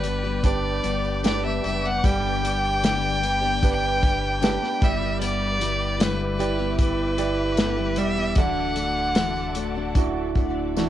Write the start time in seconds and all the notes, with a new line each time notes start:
Already playing: G1 G3 B4 D5 G5 D6
0.04 G3 B3 D4 G4, closed hi-hat, tambourine
0.24 G3 B3 D4 G4, tambourine
0.44 D4 G4 B4 D5, kick, closed hi-hat, tambourine
0.83 G1 G3 B3 D4 G4, closed hi-hat, tambourine
1.05 tambourine
1.23 G2 D3 G3 B3 D4 G4 B4 D5, snare, closed hi-hat, tambourine
1.43 G3 B3 D4 G4 E5
1.63 F#1 G3 B3 D4 G4, closed hi-hat, tambourine
1.83 G3 B3 D4 G4 F#5, tambourine
2.03 G1 G2 D3 G3 B3 D4 G4 G5, kick, closed hi-hat, tambourine
2.43 G3 B3 D4 G4, closed hi-hat, tambourine
2.83 G2 D3 G3 B3 D4 G4, snare, closed hi-hat, tambourine
3.04 tambourine
3.22 G3 B3 D4 G4, closed hi-hat, tambourine
3.41 G3 B3 D4 G4, tambourine
3.63 D4 G4 B4, kick, closed hi-hat, tambourine
4.01 G3 B3 D4 G4, kick, closed hi-hat, tambourine
4.41 G2 D3 G3 B3 D4 G4 B4, snare, closed hi-hat, tambourine
4.61 G3 B3 D4 G4, snare
4.81 G1 G3 B3 E4 G4 E5 D6, kick, closed hi-hat, tambourine
5.00 G3 B3 E4 G4, tambourine
5.20 G2 D3 G3 B3 E4 G4 D5, closed hi-hat, tambourine
5.59 G3 B3 E4 G4, closed hi-hat, tambourine
5.99 G2 D3 G3 B3 E4 G4 B4, snare, closed hi-hat, tambourine
6.20 tambourine
6.38 G3 B3 E4 G4 D5, closed hi-hat, tambourine
6.58 G3 B3 E4 G4, tambourine
6.78 B4, kick, closed hi-hat, tambourine
7.18 G3 B3 E4 G4 D5, closed hi-hat, tambourine
7.57 G2 D3 G3 B3 E4 G4, snare, closed hi-hat, tambourine
7.77 G3 B3 E4 G4
7.96 E1 G3 B3 E4 G4 E5, closed hi-hat, tambourine
8.16 G3 B3 E4 G4, tambourine
8.36 D1 D3 E3 A3 D4 F#4 A4 D5 F#5, kick, closed hi-hat, tambourine
8.76 A3 D4 F#4 D5, closed hi-hat, tambourine
9.15 D3 E3 A3 D4 F#4 D5, snare, closed hi-hat, tambourine
9.36 tambourine
9.55 A3 D4 F#4 D5, closed hi-hat, tambourine
9.75 A3 D4 F#4 D5
9.95 D4 E4 F#4, kick, closed hi-hat, tambourine
10.35 A3 D4 F#4 D5, kick, closed hi-hat, tambourine
10.77 D3 E3 A3 D4 E4 F#4 D5, snare, tambourine